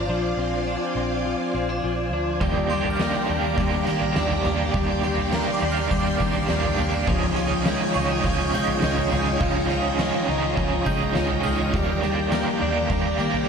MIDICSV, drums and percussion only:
0, 0, Header, 1, 2, 480
1, 0, Start_track
1, 0, Key_signature, -3, "major"
1, 0, Tempo, 582524
1, 68, Time_signature, 4, 2, 24, 8
1, 11112, End_track
2, 0, Start_track
2, 0, Title_t, "Drums"
2, 1986, Note_on_c, 9, 36, 108
2, 1989, Note_on_c, 9, 43, 109
2, 1989, Note_on_c, 9, 54, 65
2, 2069, Note_off_c, 9, 36, 0
2, 2072, Note_off_c, 9, 43, 0
2, 2072, Note_off_c, 9, 54, 0
2, 2227, Note_on_c, 9, 54, 64
2, 2309, Note_off_c, 9, 54, 0
2, 2347, Note_on_c, 9, 43, 64
2, 2430, Note_off_c, 9, 43, 0
2, 2466, Note_on_c, 9, 54, 92
2, 2468, Note_on_c, 9, 38, 121
2, 2549, Note_off_c, 9, 54, 0
2, 2551, Note_off_c, 9, 38, 0
2, 2945, Note_on_c, 9, 43, 65
2, 2945, Note_on_c, 9, 54, 60
2, 2948, Note_on_c, 9, 36, 90
2, 3028, Note_off_c, 9, 43, 0
2, 3028, Note_off_c, 9, 54, 0
2, 3030, Note_off_c, 9, 36, 0
2, 3186, Note_on_c, 9, 54, 68
2, 3268, Note_off_c, 9, 54, 0
2, 3308, Note_on_c, 9, 43, 64
2, 3391, Note_off_c, 9, 43, 0
2, 3427, Note_on_c, 9, 38, 106
2, 3427, Note_on_c, 9, 54, 85
2, 3509, Note_off_c, 9, 38, 0
2, 3509, Note_off_c, 9, 54, 0
2, 3545, Note_on_c, 9, 43, 60
2, 3628, Note_off_c, 9, 43, 0
2, 3666, Note_on_c, 9, 43, 70
2, 3666, Note_on_c, 9, 54, 76
2, 3748, Note_off_c, 9, 43, 0
2, 3748, Note_off_c, 9, 54, 0
2, 3907, Note_on_c, 9, 43, 107
2, 3907, Note_on_c, 9, 54, 64
2, 3908, Note_on_c, 9, 36, 108
2, 3990, Note_off_c, 9, 36, 0
2, 3990, Note_off_c, 9, 43, 0
2, 3990, Note_off_c, 9, 54, 0
2, 4149, Note_on_c, 9, 54, 66
2, 4231, Note_off_c, 9, 54, 0
2, 4266, Note_on_c, 9, 43, 69
2, 4349, Note_off_c, 9, 43, 0
2, 4386, Note_on_c, 9, 54, 97
2, 4388, Note_on_c, 9, 38, 125
2, 4469, Note_off_c, 9, 54, 0
2, 4470, Note_off_c, 9, 38, 0
2, 4869, Note_on_c, 9, 43, 60
2, 4869, Note_on_c, 9, 54, 62
2, 4871, Note_on_c, 9, 36, 89
2, 4952, Note_off_c, 9, 43, 0
2, 4952, Note_off_c, 9, 54, 0
2, 4953, Note_off_c, 9, 36, 0
2, 5108, Note_on_c, 9, 54, 71
2, 5110, Note_on_c, 9, 36, 95
2, 5191, Note_off_c, 9, 54, 0
2, 5192, Note_off_c, 9, 36, 0
2, 5229, Note_on_c, 9, 43, 63
2, 5311, Note_off_c, 9, 43, 0
2, 5345, Note_on_c, 9, 38, 104
2, 5345, Note_on_c, 9, 54, 83
2, 5427, Note_off_c, 9, 38, 0
2, 5427, Note_off_c, 9, 54, 0
2, 5466, Note_on_c, 9, 43, 67
2, 5548, Note_off_c, 9, 43, 0
2, 5586, Note_on_c, 9, 43, 73
2, 5586, Note_on_c, 9, 54, 74
2, 5669, Note_off_c, 9, 43, 0
2, 5669, Note_off_c, 9, 54, 0
2, 5827, Note_on_c, 9, 43, 113
2, 5827, Note_on_c, 9, 54, 65
2, 5830, Note_on_c, 9, 36, 107
2, 5909, Note_off_c, 9, 43, 0
2, 5909, Note_off_c, 9, 54, 0
2, 5912, Note_off_c, 9, 36, 0
2, 6066, Note_on_c, 9, 54, 64
2, 6148, Note_off_c, 9, 54, 0
2, 6186, Note_on_c, 9, 43, 61
2, 6268, Note_off_c, 9, 43, 0
2, 6306, Note_on_c, 9, 54, 101
2, 6308, Note_on_c, 9, 38, 119
2, 6389, Note_off_c, 9, 54, 0
2, 6390, Note_off_c, 9, 38, 0
2, 6787, Note_on_c, 9, 43, 62
2, 6787, Note_on_c, 9, 54, 69
2, 6791, Note_on_c, 9, 36, 89
2, 6869, Note_off_c, 9, 43, 0
2, 6869, Note_off_c, 9, 54, 0
2, 6873, Note_off_c, 9, 36, 0
2, 7027, Note_on_c, 9, 54, 70
2, 7109, Note_off_c, 9, 54, 0
2, 7150, Note_on_c, 9, 43, 61
2, 7232, Note_off_c, 9, 43, 0
2, 7269, Note_on_c, 9, 38, 110
2, 7269, Note_on_c, 9, 54, 88
2, 7351, Note_off_c, 9, 54, 0
2, 7352, Note_off_c, 9, 38, 0
2, 7392, Note_on_c, 9, 43, 57
2, 7474, Note_off_c, 9, 43, 0
2, 7510, Note_on_c, 9, 43, 69
2, 7510, Note_on_c, 9, 54, 77
2, 7593, Note_off_c, 9, 43, 0
2, 7593, Note_off_c, 9, 54, 0
2, 7751, Note_on_c, 9, 36, 107
2, 7752, Note_on_c, 9, 43, 104
2, 7752, Note_on_c, 9, 54, 63
2, 7834, Note_off_c, 9, 36, 0
2, 7834, Note_off_c, 9, 43, 0
2, 7834, Note_off_c, 9, 54, 0
2, 7993, Note_on_c, 9, 54, 62
2, 8075, Note_off_c, 9, 54, 0
2, 8230, Note_on_c, 9, 54, 99
2, 8232, Note_on_c, 9, 38, 123
2, 8312, Note_off_c, 9, 54, 0
2, 8314, Note_off_c, 9, 38, 0
2, 8711, Note_on_c, 9, 43, 63
2, 8711, Note_on_c, 9, 54, 61
2, 8713, Note_on_c, 9, 36, 90
2, 8793, Note_off_c, 9, 43, 0
2, 8793, Note_off_c, 9, 54, 0
2, 8795, Note_off_c, 9, 36, 0
2, 8952, Note_on_c, 9, 36, 94
2, 8953, Note_on_c, 9, 54, 70
2, 9035, Note_off_c, 9, 36, 0
2, 9035, Note_off_c, 9, 54, 0
2, 9071, Note_on_c, 9, 43, 61
2, 9153, Note_off_c, 9, 43, 0
2, 9191, Note_on_c, 9, 38, 103
2, 9191, Note_on_c, 9, 54, 84
2, 9273, Note_off_c, 9, 54, 0
2, 9274, Note_off_c, 9, 38, 0
2, 9315, Note_on_c, 9, 43, 62
2, 9398, Note_off_c, 9, 43, 0
2, 9436, Note_on_c, 9, 43, 76
2, 9436, Note_on_c, 9, 54, 72
2, 9518, Note_off_c, 9, 43, 0
2, 9518, Note_off_c, 9, 54, 0
2, 9672, Note_on_c, 9, 36, 103
2, 9673, Note_on_c, 9, 43, 116
2, 9673, Note_on_c, 9, 54, 64
2, 9754, Note_off_c, 9, 36, 0
2, 9756, Note_off_c, 9, 43, 0
2, 9756, Note_off_c, 9, 54, 0
2, 9915, Note_on_c, 9, 54, 67
2, 9997, Note_off_c, 9, 54, 0
2, 10150, Note_on_c, 9, 54, 103
2, 10151, Note_on_c, 9, 38, 126
2, 10232, Note_off_c, 9, 54, 0
2, 10234, Note_off_c, 9, 38, 0
2, 10629, Note_on_c, 9, 36, 89
2, 10629, Note_on_c, 9, 43, 65
2, 10629, Note_on_c, 9, 54, 68
2, 10711, Note_off_c, 9, 36, 0
2, 10711, Note_off_c, 9, 43, 0
2, 10711, Note_off_c, 9, 54, 0
2, 10869, Note_on_c, 9, 54, 69
2, 10952, Note_off_c, 9, 54, 0
2, 10990, Note_on_c, 9, 43, 64
2, 11073, Note_off_c, 9, 43, 0
2, 11112, End_track
0, 0, End_of_file